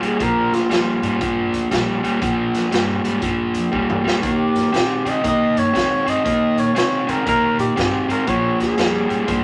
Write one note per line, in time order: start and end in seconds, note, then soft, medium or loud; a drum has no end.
0.00 0.15 D#2 medium
0.00 0.17 A#2 medium
0.00 0.18 G3 medium
0.00 closed hi-hat medium
0.05 0.24 G#4 medium
0.19 0.44 A#1 medium
0.19 0.66 A#2 medium
0.19 0.67 F3 medium
0.19 0.56 A#4 loud
0.19 kick loud
0.19 closed hi-hat medium
0.51 0.65 D2 medium
0.51 1.54 F4 medium
0.51 closed hi-hat medium
0.55 snare soft
0.69 0.94 F2 medium
0.69 0.99 A#2 medium
0.69 0.99 G3 medium
0.69 snare loud
0.69 closed hi-hat medium
1.02 1.16 G#2 loud
1.02 1.19 A#2 medium
1.02 1.19 G3 medium
1.02 closed hi-hat medium
1.21 1.45 G2 medium
1.21 1.68 A#2 medium
1.21 1.68 F3 medium
1.21 kick loud
1.21 closed hi-hat medium
1.52 1.66 D2 medium
1.52 closed hi-hat medium
1.71 1.95 A#1 medium
1.71 2.00 A#2 medium
1.71 2.00 G3 medium
1.71 kick medium
1.71 snare medium
1.71 closed hi-hat medium
2.02 2.16 D2 medium
2.02 2.20 A#2 medium
2.02 2.20 G3 medium
2.02 closed hi-hat medium
2.21 2.46 A#1 medium
2.21 2.68 A#2 medium
2.21 2.69 F3 medium
2.21 kick loud
2.21 closed hi-hat medium
2.53 2.67 F2 medium
2.53 snare soft
2.53 closed hi-hat medium
2.71 2.96 G2 medium
2.71 3.01 A#2 medium
2.71 3.01 G3 medium
2.71 snare loud
2.71 closed hi-hat medium
3.04 3.18 G#2 medium
3.04 3.21 A#2 medium
3.04 3.21 G3 medium
3.04 closed hi-hat medium
3.22 3.46 G2 medium
3.22 3.69 A#2 medium
3.22 3.69 F3 medium
3.22 kick loud
3.22 closed hi-hat medium
3.54 3.68 F2 medium
3.54 closed hi-hat medium
3.72 3.97 D2 medium
3.72 4.01 A#2 medium
3.72 4.02 G3 medium
3.72 kick medium
3.90 mid tom medium
4.04 4.18 D2 medium
4.04 4.21 A#2 medium
4.04 4.21 G3 medium
4.08 snare loud
4.22 4.47 D#2 medium
4.22 4.70 D#3 medium
4.22 4.70 A#3 medium
4.22 kick loud
4.22 closed hi-hat medium
4.27 5.11 G4 medium
4.54 4.68 G2 medium
4.54 snare soft
4.54 closed hi-hat medium
4.72 4.97 A#2 medium
4.72 5.02 D#3 medium
4.72 5.02 C4 medium
4.72 snare loud
4.72 closed hi-hat medium
5.05 5.19 C#3 medium
5.05 5.22 D#3 medium
5.05 5.22 C4 medium
5.05 5.26 D#5 medium
5.05 closed hi-hat medium
5.23 5.48 C3 medium
5.23 5.71 D#3 medium
5.23 5.71 A#3 medium
5.23 kick loud
5.23 closed hi-hat medium
5.28 5.60 D#5 loud
5.57 5.70 G2 medium
5.57 6.11 C#5 loud
5.57 closed hi-hat medium
5.73 6.03 D#3 medium
5.73 6.03 C4 medium
5.73 kick medium
5.73 closed hi-hat medium
5.77 snare medium
6.06 6.20 G2 medium
6.06 6.23 D#3 medium
6.06 6.23 C4 medium
6.06 6.61 D#5 loud
6.06 closed hi-hat medium
6.24 6.50 D#2 medium
6.24 6.72 D#3 medium
6.24 6.72 A#3 medium
6.24 kick loud
6.24 closed hi-hat medium
6.57 6.71 A#2 medium
6.57 6.77 C#5 medium
6.57 closed hi-hat medium
6.75 7.00 C3 medium
6.75 7.04 D#3 medium
6.75 7.05 C4 medium
6.75 7.12 C#5 medium
6.75 snare loud
6.75 closed hi-hat medium
7.07 7.22 C#3 loud
7.07 7.24 D#3 medium
7.07 7.24 C4 medium
7.07 7.27 A#4 medium
7.07 closed hi-hat medium
7.26 7.51 C3 medium
7.26 7.73 D#3 medium
7.26 7.73 A#3 medium
7.26 7.57 A#4 medium
7.26 kick loud
7.26 closed hi-hat medium
7.58 7.72 A#2 medium
7.58 8.06 G4 medium
7.58 closed hi-hat medium
7.76 8.01 G2 medium
7.76 8.05 D#3 medium
7.76 8.06 C4 medium
7.76 kick medium
7.76 snare medium
7.76 closed hi-hat medium
8.08 8.22 G#2 medium
8.08 8.25 D#3 medium
8.08 8.25 C4 medium
8.08 8.30 A#4 medium
8.08 closed hi-hat medium
8.27 8.51 A#1 loud
8.27 8.74 A#2 medium
8.27 8.74 F3 medium
8.27 8.60 C#5 loud
8.27 kick loud
8.27 closed hi-hat medium
8.60 8.73 D2 medium
8.60 9.44 G#4 medium
8.60 snare soft
8.60 closed hi-hat medium
8.77 9.02 F2 medium
8.77 9.07 A#2 medium
8.77 9.07 G3 medium
8.77 snare loud
8.77 closed hi-hat medium
9.08 9.23 G#2 medium
9.08 9.25 A#2 medium
9.08 9.26 G3 medium
9.08 closed hi-hat medium
9.26 9.44 G2 medium
9.26 9.44 A#2 medium
9.26 9.44 F3 medium
9.26 kick loud
9.26 closed hi-hat medium